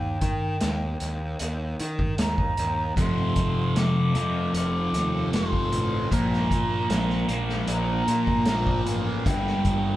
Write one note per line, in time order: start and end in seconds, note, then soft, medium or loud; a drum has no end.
0.00 0.16 D#2 medium
0.00 1.35 G5 medium
0.21 0.55 D#3 medium
0.21 kick medium
0.21 closed hi-hat medium
0.61 0.95 D#2 medium
0.61 snare medium
0.61 closed hi-hat medium
1.00 1.35 D#2 medium
1.00 closed hi-hat medium
1.39 1.74 D#2 medium
1.39 closed hi-hat medium
1.80 2.13 D#3 medium
1.80 closed hi-hat medium
1.99 kick medium
2.18 2.53 D#2 medium
2.18 2.95 A#5 medium
2.18 snare loud
2.18 closed hi-hat medium
2.38 kick medium
2.57 2.92 D#2 medium
2.57 closed hi-hat medium
2.96 3.30 F1 medium
2.96 4.12 F2 medium
2.96 4.13 C3 medium
2.96 4.14 F3 medium
2.96 6.10 A3 medium
2.96 6.10 C4 medium
2.96 9.23 F4 medium
2.96 6.10 A4 medium
2.96 3.79 C6 loud
2.96 kick loud
2.96 closed hi-hat medium
3.36 3.70 F1 medium
3.36 kick medium
3.36 closed hi-hat medium
3.76 4.09 F1 medium
3.76 4.55 D6 loud
3.76 snare medium
3.76 closed hi-hat medium
4.14 4.48 F2 medium
4.14 5.31 F2 medium
4.14 5.31 C3 medium
4.14 5.30 F3 medium
4.14 closed hi-hat medium
4.54 4.88 F1 medium
4.54 5.30 D6 loud
4.54 closed hi-hat medium
4.93 5.27 D#2 medium
4.93 closed hi-hat medium
5.32 5.66 F1 medium
5.32 6.09 F2 medium
5.32 6.10 C3 medium
5.32 6.10 F3 medium
5.32 6.14 C6 loud
5.32 snare loud
5.32 closed hi-hat medium
5.53 kick medium
5.71 6.05 A1 medium
5.71 closed hi-hat medium
6.11 6.45 A#1 medium
6.11 7.27 A#2 medium
6.11 7.27 F3 medium
6.11 9.96 A#3 medium
6.11 7.28 A#3 medium
6.11 9.96 D4 medium
6.11 9.96 A#4 medium
6.11 7.42 A#5 loud
6.11 kick medium
6.11 closed hi-hat medium
6.33 snare soft
6.51 6.84 A#2 medium
6.51 kick medium
6.51 closed hi-hat medium
6.89 7.23 A#1 medium
6.89 snare loud
6.89 closed hi-hat medium
7.10 snare soft
7.28 7.62 A#1 medium
7.28 8.45 A#2 medium
7.28 8.45 F3 medium
7.28 8.48 A#3 medium
7.28 closed hi-hat medium
7.49 snare soft
7.68 8.02 A#1 medium
7.68 8.89 A#5 medium
7.68 closed hi-hat medium
8.08 8.41 A#2 medium
8.08 closed hi-hat medium
8.27 kick medium
8.46 8.81 A#1 medium
8.46 9.23 A#2 medium
8.46 9.24 F3 medium
8.46 9.96 A#3 medium
8.46 snare loud
8.46 closed hi-hat medium
8.67 kick medium
8.86 9.19 A1 medium
8.86 9.29 F5 medium
8.86 closed hi-hat medium
9.25 9.59 G1 medium
9.25 9.96 G2 medium
9.25 9.96 D3 medium
9.25 9.96 G3 medium
9.25 9.96 G4 medium
9.25 9.96 G5 medium
9.25 kick loud
9.25 closed hi-hat medium
9.47 snare soft
9.65 9.96 G1 medium
9.65 kick medium
9.65 closed hi-hat medium